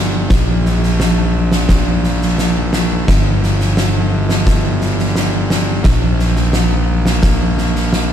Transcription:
0.00 0.27 G1 medium
0.30 3.04 A#1 medium
0.30 kick medium
0.30 snare medium
0.66 snare soft
0.83 snare soft
1.00 snare medium
1.52 snare medium
1.69 kick medium
1.69 snare medium
2.04 snare soft
2.22 snare soft
2.38 snare medium
2.73 snare medium
3.08 5.82 G1 medium
3.08 kick medium
3.08 snare medium
3.43 snare soft
3.60 snare soft
3.77 snare medium
4.29 snare medium
4.47 kick medium
4.47 snare medium
4.81 snare soft
4.99 snare soft
5.16 snare medium
5.50 snare medium
5.84 8.13 A#1 medium
5.84 kick medium
5.84 snare medium
6.19 snare soft
6.36 snare soft
6.53 snare medium
7.06 snare medium
7.23 kick medium
7.23 snare medium
7.58 snare soft
7.76 snare soft
7.93 snare medium

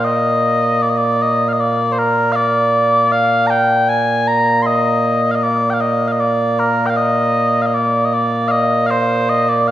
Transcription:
0.00 9.71 A#2 medium
0.00 9.71 A#3 medium
0.05 0.82 D#5 loud
0.82 0.89 D5 medium
0.89 0.97 D#5 medium
0.97 1.22 D5 medium
1.22 1.49 D#5 medium
1.49 1.53 F5 medium
1.53 1.60 D#5 medium
1.60 1.92 D5 medium
1.92 1.98 C5 medium
1.98 2.32 A#4 medium
2.32 3.12 D5 loud
2.32 2.36 F5 loud
3.12 3.47 F5 loud
3.47 3.89 G5 loud
3.47 3.50 A#5 loud
3.89 4.28 G#5 loud
4.28 4.62 A#5 loud
4.62 4.66 C6 loud
4.66 5.32 D#5 loud
5.32 5.43 D#5 medium
5.32 5.35 F5 medium
5.43 5.70 D5 medium
5.70 5.81 F5 medium
5.70 5.73 G5 medium
5.81 6.08 D#5 medium
6.08 6.12 F5 medium
6.12 6.20 D#5 medium
6.20 6.59 D5 medium
6.59 6.86 A#4 medium
6.86 6.97 F5 medium
6.86 6.90 G5 medium
6.97 7.62 D#5 loud
7.62 7.66 F5 medium
7.66 7.74 D#5 medium
7.74 8.05 D5 medium
8.05 8.13 D#5 medium
8.13 8.48 D5 medium
8.48 8.87 D#5 loud
8.48 8.52 F5 loud
8.87 8.91 F5 medium
8.91 9.29 C5 medium
9.29 9.48 D#5 loud
9.48 9.68 D5 medium
9.68 9.71 F5 medium

